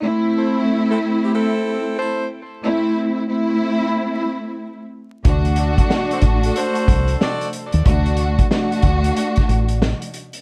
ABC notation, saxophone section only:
X:1
M:4/4
L:1/16
Q:"Swing 16ths" 1/4=92
K:Ador
V:1 name="Saxophone section"
z2 [EAc]2 z [CEA] z [CEG] [CEA]4 [EAc]2 z2 | z16 | z2 [FAd]2 z [FAc] z [DFA] [FAc]4 [FAd]2 z2 | z16 |]